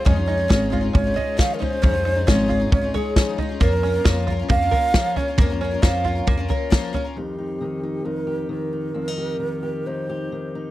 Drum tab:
SD |--o---o-|--o---o-|--o---o-|--o---o-|
FT |o--ooo-o|o--ooo-o|o--ooo-o|o--ooo-o|
BD |o-o-o-o-|o-o-o-o-|o-o-o-o-|o-o-o-o-|

SD |--------|--------|
FT |--------|--------|
BD |--------|--------|